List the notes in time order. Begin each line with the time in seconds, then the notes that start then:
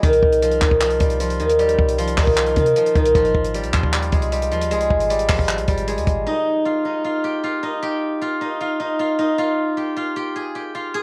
Already playing: F4 G#4
0.03 C2 D#3 D#4, kick, closed hi-hat
0.13 closed hi-hat
0.23 C2, kick
0.32 closed hi-hat
0.42 F3 F4, closed hi-hat
0.51 closed hi-hat
0.62 C2 D#3 D#4, kick, clap, closed hi-hat
0.71 kick
0.81 F3 F4, clap, closed hi-hat
0.90 closed hi-hat
1.00 C2 G3 G4, kick, closed hi-hat
1.10 closed hi-hat
1.20 F3 F4, closed hi-hat
1.30 closed hi-hat
1.40 D#2 D#3 D#4, closed hi-hat
1.49 closed hi-hat
1.59 G3 G4, closed hi-hat
1.69 closed hi-hat
1.79 C2, kick
1.88 closed hi-hat
1.98 F3 F4, closed hi-hat
2.07 closed hi-hat
2.17 C2 D#3 D#4, kick, clap, open hi-hat
2.27 kick
2.37 F3 F4, clap, closed hi-hat
2.46 closed hi-hat
2.56 C3 D#3 D#4, kick, closed hi-hat
2.66 closed hi-hat
2.76 F3 F4, closed hi-hat
2.86 closed hi-hat
2.95 C2 D#3 D#4, kick, closed hi-hat
3.05 closed hi-hat
3.15 G#1 F3 F4, kick, closed hi-hat
3.25 closed hi-hat
3.34 G#1, kick
3.44 closed hi-hat
3.54 G3 G4, closed hi-hat
3.63 B1, closed hi-hat
3.73 D#2 F3 F4, kick, clap, closed hi-hat
3.83 kick
3.93 G3 G4, clap, closed hi-hat
4.02 closed hi-hat
4.12 C2 G#3 G#4, kick, closed hi-hat
4.22 closed hi-hat
4.32 G3 G4, closed hi-hat
4.42 closed hi-hat
4.51 D#2 F3 F4, closed hi-hat
4.61 closed hi-hat
4.71 C2 G#3 G#4, closed hi-hat
4.80 closed hi-hat
4.90 G#1, kick
5.00 closed hi-hat
5.10 G3 G4, closed hi-hat
5.19 closed hi-hat
5.29 G#1 F3 F4, kick, clap, open hi-hat
5.39 kick
5.49 clap, closed hi-hat
5.58 B1, closed hi-hat
5.68 G#1 G3 G4, kick, closed hi-hat
5.77 closed hi-hat
5.88 G#3 G#4, closed hi-hat
5.97 D#2, closed hi-hat
6.07 G#1, kick, closed hi-hat
6.27 D#4 D#5
6.66 F4 F5
6.85 D#4 D#5
7.04 F4 F5
7.24 G4 G5
7.44 F4 F5
7.63 D#4 D#5
7.83 G4 G5
8.21 F4 F5
8.41 D#4 D#5
8.61 F4 F5
8.80 D#4 D#5
8.99 F4 F5
9.19 D#4 D#5
9.38 F4 F5
9.77 G4 G5
9.97 F4 F5
10.16 G4 G5
10.36 G#4 G#5
10.55 G4 G5
10.75 F4 F5
10.94 G#4 G#5